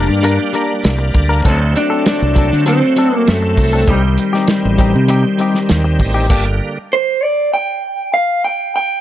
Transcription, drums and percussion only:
0.24 closed hi-hat
0.54 closed hi-hat
0.84 snare, closed hi-hat
1.15 kick, closed hi-hat
1.45 kick, closed hi-hat
1.76 closed hi-hat
2.06 snare, closed hi-hat
2.36 kick, closed hi-hat
2.52 snare
2.66 closed hi-hat
2.96 closed hi-hat
3.27 snare, closed hi-hat
3.57 kick, open hi-hat
3.87 kick, closed hi-hat
4.18 closed hi-hat
4.34 snare
4.48 snare, closed hi-hat
4.78 kick, closed hi-hat
5.08 closed hi-hat
5.39 closed hi-hat
5.54 snare
5.69 snare, closed hi-hat
6.00 kick, open hi-hat
6.30 kick, closed hi-hat, crash

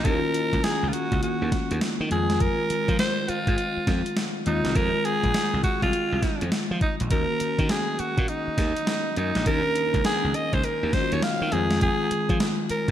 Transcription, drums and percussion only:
0.05 kick, closed hi-hat
0.34 closed hi-hat
0.53 kick, closed hi-hat
0.64 snare, closed hi-hat
0.93 closed hi-hat
1.12 kick, closed hi-hat
1.23 closed hi-hat
1.52 kick, snare, closed hi-hat
1.71 closed hi-hat
1.81 snare, closed hi-hat
2.11 closed hi-hat
2.30 snare, closed hi-hat
2.40 kick, closed hi-hat
2.70 closed hi-hat
2.88 kick, closed hi-hat
2.99 snare, closed hi-hat
3.29 closed hi-hat
3.47 kick, closed hi-hat
3.58 closed hi-hat
3.87 kick, snare, closed hi-hat
4.06 closed hi-hat
4.17 snare, closed hi-hat
4.46 closed hi-hat
4.65 snare, closed hi-hat
4.76 kick, closed hi-hat
5.05 closed hi-hat
5.23 kick, closed hi-hat
5.34 snare, closed hi-hat
5.64 kick, closed hi-hat
5.82 kick, closed hi-hat
5.93 closed hi-hat
6.22 kick, snare, closed hi-hat
6.41 closed hi-hat
6.52 snare, closed hi-hat
6.81 kick, closed hi-hat
7.00 closed hi-hat
7.11 kick, closed hi-hat
7.40 closed hi-hat
7.59 kick, closed hi-hat
7.69 snare, closed hi-hat
7.99 closed hi-hat
8.18 kick, closed hi-hat
8.28 closed hi-hat
8.58 kick, snare, closed hi-hat
8.77 closed hi-hat
8.87 snare, closed hi-hat
9.16 closed hi-hat
9.35 snare, closed hi-hat
9.46 kick, closed hi-hat
9.76 closed hi-hat
9.94 kick, closed hi-hat
10.05 snare, closed hi-hat
10.34 closed hi-hat
10.53 kick, closed hi-hat
10.64 closed hi-hat
10.93 kick, snare, closed hi-hat
11.12 closed hi-hat
11.22 snare, closed hi-hat
11.52 closed hi-hat
11.71 snare, closed hi-hat
11.81 kick, closed hi-hat
12.11 closed hi-hat
12.29 kick, closed hi-hat
12.40 snare, closed hi-hat
12.70 closed hi-hat

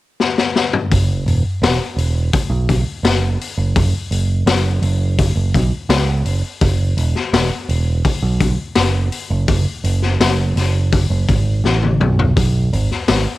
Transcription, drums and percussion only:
0.20 snare
0.38 snare
0.56 snare
0.73 mid tom
0.92 kick, open hi-hat
1.28 open hi-hat
1.63 snare, open hi-hat
1.98 open hi-hat
2.33 kick, open hi-hat
2.69 kick, open hi-hat
3.05 snare, open hi-hat
3.41 open hi-hat
3.76 kick, open hi-hat
4.12 open hi-hat
4.47 snare, open hi-hat
4.82 open hi-hat
5.18 kick, open hi-hat
5.54 kick, open hi-hat
5.90 snare, open hi-hat
6.25 open hi-hat
6.61 kick, open hi-hat
6.97 open hi-hat
7.15 snare
7.34 snare, open hi-hat
7.69 open hi-hat
8.05 kick, open hi-hat
8.40 kick, open hi-hat
8.75 snare, open hi-hat
9.12 open hi-hat
9.48 kick, open hi-hat
9.84 open hi-hat
10.02 snare
10.21 snare, open hi-hat
10.57 snare, open hi-hat
10.92 kick, open hi-hat
11.29 kick, open hi-hat
11.65 snare
11.83 high tom
12.01 mid tom
12.19 floor tom
12.37 kick, open hi-hat
12.73 open hi-hat
12.91 snare
13.08 snare, open hi-hat

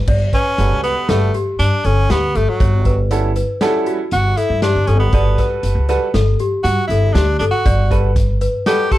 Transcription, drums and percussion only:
0.07 kick, crash
0.33 kick, closed hi-hat
0.58 snare, closed hi-hat
0.83 closed hi-hat
1.09 snare, closed hi-hat
1.34 closed hi-hat
1.59 closed hi-hat
1.84 closed hi-hat
2.10 snare, closed hi-hat
2.35 closed hi-hat
2.60 kick, closed hi-hat
2.85 kick, closed hi-hat
3.11 closed hi-hat
3.36 closed hi-hat
3.61 snare, closed hi-hat
3.86 closed hi-hat
4.11 closed hi-hat
4.37 closed hi-hat
4.62 snare, closed hi-hat
4.87 closed hi-hat
5.13 kick, closed hi-hat
5.38 kick, snare, closed hi-hat
5.63 closed hi-hat
5.89 snare, closed hi-hat
6.14 snare, closed hi-hat
6.39 closed hi-hat
6.65 closed hi-hat
6.90 closed hi-hat
7.15 snare, closed hi-hat
7.40 closed hi-hat
7.66 kick, closed hi-hat
7.91 kick, closed hi-hat
8.16 kick, snare, closed hi-hat
8.41 closed hi-hat
8.66 snare, closed hi-hat
8.91 kick, snare, closed hi-hat

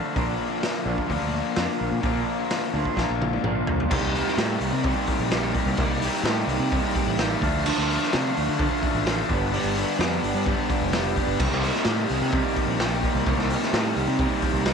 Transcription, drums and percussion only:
0.16 kick, open hi-hat
0.63 snare, open hi-hat
0.98 kick
1.10 kick, open hi-hat
1.56 snare, open hi-hat
2.03 kick, open hi-hat
2.50 snare, open hi-hat
2.85 kick
2.97 kick, snare
3.22 mid tom
3.33 mid tom
3.44 mid tom
3.67 floor tom
3.80 floor tom
3.91 kick, crash
4.15 open hi-hat
4.27 snare
4.38 snare, open hi-hat
4.61 open hi-hat
4.84 kick, open hi-hat
5.07 kick, open hi-hat
5.31 snare, open hi-hat
5.55 kick, open hi-hat
5.77 kick, open hi-hat
6.02 open hi-hat
6.25 snare, open hi-hat
6.49 open hi-hat
6.72 kick, open hi-hat
6.95 kick, open hi-hat
7.19 snare, open hi-hat
7.42 kick, open hi-hat
7.66 crash
7.79 snare
7.90 open hi-hat
8.03 snare
8.13 snare, open hi-hat
8.37 open hi-hat
8.59 kick, open hi-hat
8.83 kick, open hi-hat
9.07 snare, open hi-hat
9.29 kick, open hi-hat
9.54 open hi-hat
9.77 open hi-hat
10.00 snare, open hi-hat
10.24 open hi-hat
10.46 kick, open hi-hat
10.70 kick, open hi-hat
10.93 snare, open hi-hat
11.16 kick, open hi-hat
11.40 kick, crash
11.51 snare
11.63 open hi-hat
11.75 snare
11.84 snare, open hi-hat
12.09 open hi-hat
12.32 kick, open hi-hat
12.56 kick, open hi-hat
12.80 snare, open hi-hat
13.03 kick, open hi-hat
13.26 kick, open hi-hat
13.39 snare
13.50 open hi-hat
13.62 snare
13.73 snare, open hi-hat
13.96 open hi-hat
14.19 kick, open hi-hat
14.42 kick, open hi-hat
14.65 snare, open hi-hat

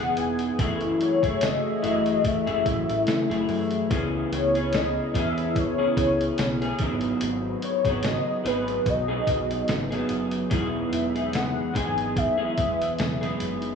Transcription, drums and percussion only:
0.00 snare, closed hi-hat
0.17 closed hi-hat
0.39 closed hi-hat
0.59 kick, closed hi-hat
0.81 closed hi-hat
1.01 closed hi-hat
1.23 kick, closed hi-hat
1.41 snare, closed hi-hat
1.84 closed hi-hat
2.06 closed hi-hat
2.24 kick, closed hi-hat
2.47 closed hi-hat
2.66 kick, closed hi-hat
2.89 closed hi-hat
3.07 snare, closed hi-hat
3.31 snare, closed hi-hat
3.49 open hi-hat
3.71 closed hi-hat
3.91 kick, closed hi-hat
4.33 closed hi-hat
4.55 closed hi-hat
4.73 snare, closed hi-hat
5.15 kick, closed hi-hat
5.38 closed hi-hat
5.56 kick, closed hi-hat
5.97 kick, closed hi-hat
6.21 closed hi-hat
6.38 snare, closed hi-hat
6.62 snare, closed hi-hat
6.79 kick, closed hi-hat
7.01 closed hi-hat
7.21 closed hi-hat
7.62 closed hi-hat
7.85 kick, closed hi-hat
8.03 snare, closed hi-hat
8.46 closed hi-hat
8.68 closed hi-hat
8.86 kick, closed hi-hat
9.27 kick, closed hi-hat
9.51 closed hi-hat
9.68 snare, closed hi-hat
9.92 snare, closed hi-hat
10.09 closed hi-hat
10.31 closed hi-hat
10.51 kick, closed hi-hat
10.93 closed hi-hat
11.16 closed hi-hat
11.33 snare, closed hi-hat
11.75 kick, closed hi-hat
11.98 closed hi-hat
12.16 kick, closed hi-hat
12.58 kick, closed hi-hat
12.82 closed hi-hat
12.99 snare, closed hi-hat
13.23 snare, closed hi-hat
13.40 closed hi-hat
13.62 closed hi-hat

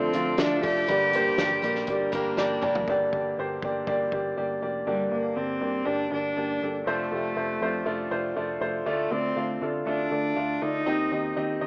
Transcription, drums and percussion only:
0.13 closed hi-hat
0.38 snare, closed hi-hat
0.63 kick, open hi-hat
0.89 closed hi-hat
1.13 closed hi-hat
1.38 snare, closed hi-hat
1.64 closed hi-hat
1.75 snare
1.87 kick, closed hi-hat
2.13 kick, closed hi-hat
2.37 snare
2.62 mid tom
2.75 floor tom
2.88 kick
3.13 kick
3.62 kick
3.87 kick
4.12 kick

